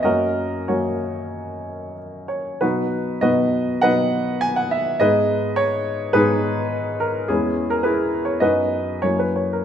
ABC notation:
X:1
M:4/4
L:1/16
Q:1/4=101
K:B
V:1 name="Upright piano"
[FAd]4 [FAc]8 z2 c2 | [DFB]4 [FBd]4 [Bdf]4 g f e2 | [GBd]4 c4 [DGB]6 A2 | [CEG]3 A [EGB]3 c [FBd]4 c B c A |]
V:2 name="Upright piano" clef=bass
[F,,F,A,C]4 [F,,F,A,C]12 | [B,,F,B,]4 [B,,F,B,D]4 [B,,F,B,D]8 | [G,,G,B,D]8 [G,,G,B,]8 | [E,,G,B,]8 [F,,F,B,D]4 [F,,F,A,E]4 |]